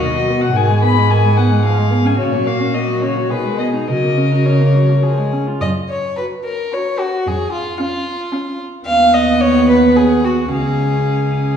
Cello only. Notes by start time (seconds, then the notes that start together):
0.01 B2
0.56 G#2
2.20 A#2
3.30 B2
3.87 C#3
5.60 F#2
7.26 F2
8.86 D#2
10.51 C#2